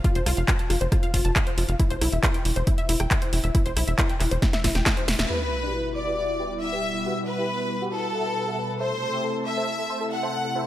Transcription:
0.04 F4, kick, closed hi-hat
0.15 F1 C5, closed hi-hat
0.26 C2 F4, cross-stick, open hi-hat
0.37 F1 F5, closed hi-hat
0.48 F4, kick, clap, closed hi-hat
0.59 A5, closed hi-hat
0.70 F1 F4, cross-stick, open hi-hat
0.81 F1 C5, closed hi-hat
0.92 F4, kick, cross-stick, closed hi-hat
1.03 F5, closed hi-hat
1.14 F1 F4, kick, open hi-hat
1.25 F1 A5, closed hi-hat
1.36 F4, kick, clap, closed hi-hat
1.47 C5, closed hi-hat
1.58 F1 F4, open hi-hat
1.69 F1 F5, closed hi-hat
1.79 E4, kick, closed hi-hat
1.90 E1 C5, closed hi-hat
2.01 B1 E4, cross-stick, open hi-hat
2.12 E1 E5, closed hi-hat
2.23 E4, kick, clap, closed hi-hat
2.34 G5, closed hi-hat
2.45 E1 E4, open hi-hat
2.56 E1 C5, closed hi-hat
2.67 E4, kick, closed hi-hat
2.78 E5, closed hi-hat
2.89 E1 E4, open hi-hat
3.00 E1 G5, cross-stick, closed hi-hat
3.11 E4, kick, clap, closed hi-hat
3.22 C5, closed hi-hat
3.33 E1 E4, open hi-hat
3.44 E1 E5, closed hi-hat
3.55 E4, kick, closed hi-hat
3.66 E1 C5, closed hi-hat
3.77 B1 E4, cross-stick, open hi-hat
3.87 E1 E5, closed hi-hat
3.98 E4, kick, clap, closed hi-hat
4.09 G5, closed hi-hat
4.20 E1 E4, cross-stick, clap, open hi-hat
4.31 E1 C5, closed hi-hat
4.42 E4, kick, snare, closed hi-hat
4.53 E5, snare, closed hi-hat
4.64 E1 E4, kick, snare, open hi-hat
4.75 E1 G5, snare, closed hi-hat
4.86 E4, kick, snare, clap, closed hi-hat
4.97 C5, closed hi-hat
5.08 E1 E4, snare, open hi-hat
5.19 E1 E5, snare, closed hi-hat
5.30 B2 G3 E4 F#4 G4 B4 E5, sub drop
5.41 E4
5.52 E4
5.63 D4 G4 B4 D5
5.74 E4
5.85 E4
5.96 E4 D5
6.07 E4 G4 B4 E5
6.17 E4
6.28 E4
6.40 G4 B4 E5 G5
6.51 E4
6.61 E4 E5
6.72 G4 B4 E5 G5
6.83 E4
6.94 E4
7.05 F#4 G4 B4 F#5
7.16 B4
7.27 B4
7.38 E4 G4 B4 E5
7.49 B4
7.60 B4
7.71 B4
7.82 F#4 G4 B4 F#5
7.93 A4 B4
8.04 B4
8.15 A4 E5 F#5 A5
8.26 B4
8.36 B4
8.47 A4 E5 F#5 A5
8.58 B4
8.69 B4
8.80 C3 A3 E4 A4 C5 E5 A5
8.91 A4
9.02 A4
9.13 G4 C5 E5 G5
9.24 A4
9.35 A4
9.46 A4 E5
9.57 A4 C5 E5 A5
9.68 A4
9.79 A4
9.90 C5 E5 A5 C6
10.00 A4
10.12 A4 F#5
10.23 C5 E5 A5 C6
10.33 A4
10.44 A4
10.55 F#3 E4 A4 C5 E5

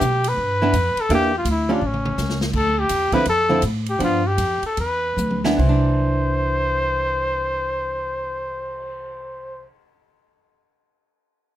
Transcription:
Already playing: G4
0.01 B2, hi-hat pedal
0.24 B4, ride
0.37 G2
0.62 E3 B3 D4
0.73 F2, hi-hat pedal, ride
0.96 muted upright bass stroke, ride
1.01 A4
1.09 E2 E3 A#3 D4 G4, ride
1.14 G4
1.38 F4
1.45 D2, hi-hat pedal, ride
1.51 E4
1.69 G3 C#4 D4 F4
1.81 A1
1.86 C#4
1.94 mid tom
2.05 mid tom
2.18 C#2, snare, hi-hat pedal
2.30 snare
2.41 snare
2.53 D2 A4, kick, crash
2.79 G4
2.89 E2, hi-hat pedal, ride
3.12 D3 F3 C4 E4 B4, muted upright bass stroke, kick, ride
3.25 F2 A4, ride
3.49 D3 F3 C4 E4
3.62 A2, hi-hat pedal, ride
3.86 G4, ride
3.99 G2 F3 B3 D4, ride
4.04 F4
4.27 G4
4.38 F2, hi-hat pedal, ride
4.62 A4, muted upright bass stroke, ride
4.77 E2 B4, ride
5.17 D2, hi-hat pedal, high tom
5.31 high tom
5.44 E3 B3 D4, snare
5.57 C2 E3 C5, kick, crash
5.69 D4
5.85 cymbal swell

